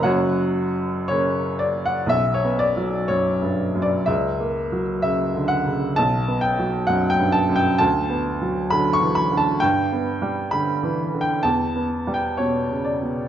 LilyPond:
<<
  \new Staff \with { instrumentName = "Upright piano" } { \time 2/4 \key b \minor \tempo 4 = 64 << { fis''4 cis''8 d''16 fis''16 | e''16 cis''16 d''8 cis''8. d''16 | e''4 e''8 fis''8 | a''8 g''8 fis''16 g''16 a''16 g''16 |
a''4 b''16 cis'''16 b''16 a''16 | g''4 b''8. g''16 | a''8. g''16 cis''8 d''8 | } \\ { <fis' cis''>4. r8 | r2 | r2 | r2 |
r2 | r2 | r2 | } >> }
  \new Staff \with { instrumentName = "Upright piano" } { \clef bass \time 2/4 \key b \minor <fis,, fis,>4 <cis ais cis'>4 | \tuplet 3/2 { b,,8 b8 fis8 fis,8 g,8 fis,8 } | \tuplet 3/2 { cis,8 ais8 fis8 cis8 d8 cis8 } | \tuplet 3/2 { b,,8 b8 fis8 fis,8 g,8 fis,8 } |
\tuplet 3/2 { d,8 b8 fis8 d8 e8 d8 } | \tuplet 3/2 { g,8 b8 g8 d8 e8 d8 } | \tuplet 3/2 { e,8 b8 g8 b,8 cis8 b,8 } | }
>>